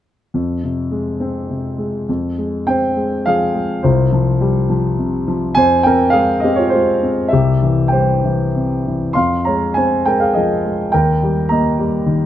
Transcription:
grand piano
0.34 F2
0.64 C3
0.91 G#3
1.20 C4
1.50 C3
1.78 G#3
2.09 F2
2.38 G#3
2.67 C4 C5 G5
2.97 G#3
3.26 F3 G#4 F5
3.55 G#3
3.83 C2 F4 C5
4.12 F3
4.41 G3
4.70 F3
4.99 C3
5.28 F3
5.55 F2 C5 G#5
5.83 C4 A#4 G5
6.10 G#4 F5
6.15 G#3
6.40 G4 D#5
6.44 C4
6.56 F4 C#5
6.70 F4 C5
6.74 G#3
7.03 C4
7.28 G4 E5
7.33 C2
7.63 E3
7.88 C5 G5
7.93 G3
8.24 E3
8.56 C3
8.87 E3
9.13 F2 F5 C6
9.45 G#3 C#5 A#5
9.74 C4 C5 G#5
10.05 G#3 A#4 G5
10.20 G#4 F5
10.34 F3 G#4 D#5
10.65 G#3
10.92 D#2 A#4 G5
11.23 G3
11.49 A#3 D#5 A#5
11.79 G3
12.06 D#3

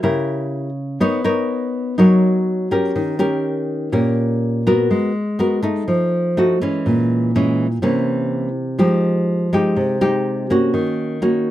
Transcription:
nylon-string guitar
0.03 C#3 E4 G4 A#4
1.00 B3 D#4 A#4 C#5
1.24 D#4 A#4 C#5
1.98 F#3 D#4 A#4 C#5
2.71 C#4 G4 A#4
2.96 D#3
3.19 C#4 G4 A#4
3.92 A#2 C#4 G4 A#4
4.67 B3 F#4 A#4
4.91 G#3
5.39 B3 F#4 A#4
5.63 A3 D#4
5.88 F3
6.37 A3 D#4 F#4
6.61 E3 G#3 C#4
6.86 A#2
7.36 E3 G#3 C#4
7.82 C3 E3 A#3 C#4
8.79 F3 G#3 D#4 G4
9.53 G#3 D#4 G4
9.76 C3
10.01 G#3 D#4 G4
10.50 A#3 C#4 F#4
10.74 D#3
11.22 A#3 C#4 F#4

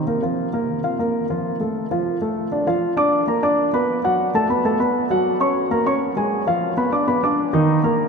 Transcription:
grand piano
0.07 A#3 A#4
0.22 F3 F4
0.53 A#3 A#4
0.84 F4 F5
0.99 A#3 A#4
1.30 F3 F4
1.60 A3 A4
1.91 F3 F4
2.22 A3 A4
2.52 D4 D5
2.67 F3 F4 F5
2.97 D4 D5 D6
3.27 A#3 A#4 A#5
3.43 D4 D5 D6
3.73 B3 B4 B5
4.04 F#3 F#4 F#5
4.34 A3 A4 A5
4.49 B3 B4 B5
4.65 A3 A4 A5
4.80 B3 B4 B5
5.10 F#3 F#4 F#5
5.40 C#4 C#5 C#6
5.71 A#3 A#4 A#5
5.86 C#4 C#5 C#6
6.16 G#3 G#4 G#5
6.47 F3 F4 F5
6.77 B3 B4 B5
6.92 D4 D5 D6
7.07 B3 B4 B5
7.23 D4 D5 D6
7.53 D#3 D#4 D#5
7.83 A#3 A#4 A#5

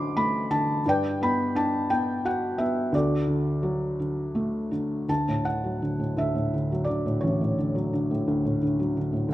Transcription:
felt piano
Already playing: A1 D3 F#3 A3 C5 F#5 A5 B5 C6 D6
0.17 A3 B5
0.51 D3 A5
0.86 G2 B4 D5 G5
1.21 B3 B5
1.55 D4 A5
1.90 B3 G5
2.25 F#4 F#5
2.58 B3 E5
2.92 D2 F#4 A4 D5
3.27 D3
3.63 F#3
4.00 D3
4.35 A3
4.71 D3
5.08 D2 A5
5.29 A2
5.45 D3 F#5
5.64 F#3
5.82 D3
6.00 A2
6.17 D2 E5
6.35 A2
6.54 D3
6.72 F#3
6.84 D5
6.89 D3
7.06 A2
7.21 A1 C#5
7.41 A2
7.58 D3
7.75 F#3
7.93 D3
8.11 A2
8.27 D2
8.45 A2
8.63 D3
8.80 F#3
8.97 D3
9.13 A2
9.29 D2

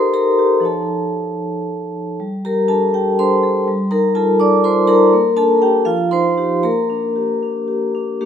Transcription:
vibraphone
Already playing: D#4 G4 A4 A#4 C5 D#5 A#5 C6 D#6
0.13 A4 A#4 A#5
0.39 G4
0.60 F3 D#4 C#5
0.65 A4 A5
2.20 G3
2.45 G4 A#4 A#5
2.68 D4 A4 A5
2.94 G4 A4 G5
3.19 D4 C5 C6
3.43 A4
3.68 G3
3.91 D#4 A#4 A#5
4.15 F4 A4 A5
4.39 D#4 D5 D6
4.64 F4 C5 C6
4.87 D#4 A#4 A#5
5.13 A#3
5.37 D4 A4 A5
5.62 D4 G4 G5
5.85 F3 F4 F5
6.11 D#4 C5 C6
6.37 D#4 G4
6.63 A#3 A#4 A#5
6.90 D4
7.16 G4
7.43 D4
7.68 G4
7.95 D4
8.21 A#3 D4 G4

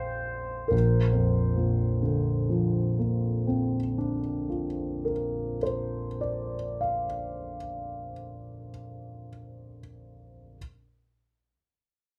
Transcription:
grand piano
Already playing: A#1 F2 C5
0.68 A#1 A#4
1.13 F2
1.57 A#2
2.03 D3
2.50 F3
2.99 A#3
3.47 C4
3.98 D4
4.49 F4
5.05 A#4
5.63 C5
6.21 D5
6.81 F5

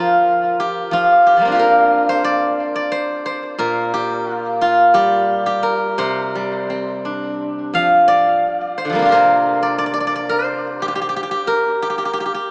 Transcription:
guzheng
Already playing: F3 F4 A#4 C5
0.60 G4
0.91 F3 F4
1.27 G4
1.37 F3 G3
1.41 A#3 C4
1.48 D4
1.52 F4 G4
1.59 A#4
2.09 C5
2.24 D5
2.76 D5
2.92 C5
3.26 C5
3.58 A#2 A#4
3.94 G4
4.35 F4
4.61 F4
4.94 G3 G4
5.46 G4
5.63 A#4
5.98 C3 C5
6.35 G3
6.70 C4
7.05 D4
7.74 F3 F5
8.08 D5
8.78 C5
8.85 D3
8.90 F3 G3
8.95 A#3 C4
9.02 D4 F4
9.09 G4 A#4 C5
9.14 C3
9.63 D5
9.78 D5
9.86 D5
9.94 D5
10.00 D5
10.07 D5
10.15 D5
10.29 C5
10.82 G4
10.88 G4
10.95 G4
11.01 G4
11.09 G4
11.16 G4
11.23 G4
11.31 G4
11.47 A#4
11.82 G4
11.90 G4
11.98 G4
12.05 G4
12.13 G4
12.20 G4
12.26 G4
12.34 G4

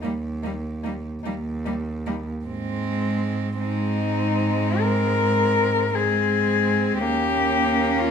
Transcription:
cello
0.01 D#2 G3 A#3 D#4
0.43 G3 A#3 D#4
0.83 G3 A#3 D#4
1.23 D#2 G3 A#3 D#4
1.65 G3 A#3 D#4
2.07 G3 A#3 D#4
2.45 G#2 G#3 C4
3.59 G#3 C4 D#4
4.81 A#4
5.95 G#3 C4 G#4
6.98 D#2 A#3 C#4 G4
8.00 F4

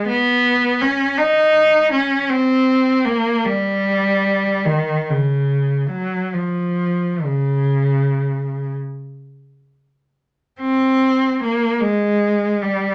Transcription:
cello
0.07 B3
0.81 C#4
1.18 D#4
1.92 C#4
2.30 C4
3.05 A#3
3.45 G3
4.65 D#3
5.09 C#3
5.90 F#3
6.33 F3
7.25 C#3
10.60 C4
11.43 A#3
11.80 G#3
12.62 G3

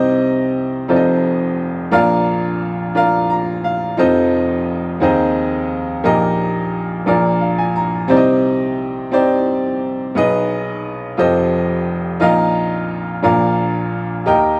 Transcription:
grand piano
Already playing: C2 C3 C4 D#4 G4 C5 D#5
0.88 F1 F2 D#4 F4 A4 C5 D5
0.96 D#5
1.91 A#1 A#2 D4 F4 A#4 D5 F5
2.95 D4 F4 A#4 D5 F5
3.30 A#5
3.64 F5
3.97 F1 F2 D#4 F4 A4 C5 D#5
5.00 D#2 D#3 C4 D#4 G#4 C5 D#5
6.04 A#1 A#2 A#3 D#4 G4 A#4 D#5
7.06 A#1 A#2 A#3 D4 F4 A#4 D5
7.41 F5
7.58 G#5
7.76 A#5
8.08 C2 C3 C4 D#4 G4 C5 D5
8.17 D#5
9.12 C4 D#4 G4 C5 D5
10.15 B1 B2 B3 D#4 G#4 B4 D#5
11.17 F1 F2 F4 G4 A4 C5 D#5
12.20 A#1 A#2 D#4 F4 A#4 D#5 F5
13.22 A#1 A#2 D4 F4 A#4 D5 F5
14.26 D#2 D#3 D#4 G4 A#4 D#5 G5

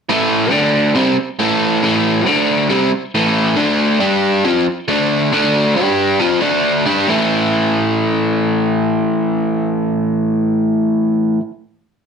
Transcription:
overdriven electric guitar
0.09 A2 E3 A3
0.51 D3 A3 D4
0.95 C3 G3 C4
1.39 A2 E3 A3
1.82 A2 E3 A3
2.26 D3 A3 D4
2.69 C3 G3 C4
3.15 A2 E3 A3
3.56 D3 A3 D4
4.00 G3 D4 G4
4.44 F3 C4 F4
4.88 D3 A3 D4
5.32 D3 A3 D4
5.76 G3 D4 G4
6.19 F3 C4 F4
6.40 D3 A3 D4
6.86 G3 D4 G4
7.07 A2 E3 A3

